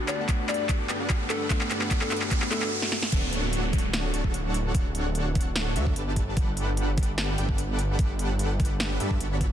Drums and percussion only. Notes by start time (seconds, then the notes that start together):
0.08 clap, closed hi-hat
0.29 kick, clap, closed hi-hat
0.49 clap, closed hi-hat
0.54 closed hi-hat
0.69 kick, clap, closed hi-hat
0.89 clap, closed hi-hat
1.10 kick, clap, closed hi-hat
1.30 clap, closed hi-hat
1.50 kick, clap, closed hi-hat
1.61 clap
1.71 clap, closed hi-hat
1.81 clap
1.91 kick, clap, closed hi-hat
2.01 clap
2.11 clap, closed hi-hat
2.16 closed hi-hat
2.22 clap
2.31 kick, clap, closed hi-hat
2.42 clap
2.52 clap, closed hi-hat
2.62 clap
2.82 snare
2.92 snare
3.03 snare
3.12 kick, closed hi-hat, crash
3.33 closed hi-hat
3.53 closed hi-hat
3.73 kick, closed hi-hat
3.79 closed hi-hat
3.94 snare, closed hi-hat
4.14 closed hi-hat
4.24 kick
4.34 closed hi-hat
4.54 closed hi-hat
4.75 kick, closed hi-hat
4.95 closed hi-hat
5.15 closed hi-hat
5.35 kick, closed hi-hat
5.41 closed hi-hat
5.56 snare, closed hi-hat
5.76 closed hi-hat
5.87 kick
5.96 closed hi-hat
6.16 kick, closed hi-hat
6.37 kick, closed hi-hat
6.57 closed hi-hat
6.77 closed hi-hat
6.98 kick, closed hi-hat
7.03 closed hi-hat
7.18 snare, closed hi-hat
7.38 closed hi-hat
7.49 kick
7.58 closed hi-hat
7.79 closed hi-hat
7.99 kick, closed hi-hat
8.19 closed hi-hat
8.39 closed hi-hat
8.60 kick, closed hi-hat
8.65 closed hi-hat
8.80 snare, closed hi-hat
9.00 closed hi-hat
9.11 kick
9.21 closed hi-hat
9.41 kick, closed hi-hat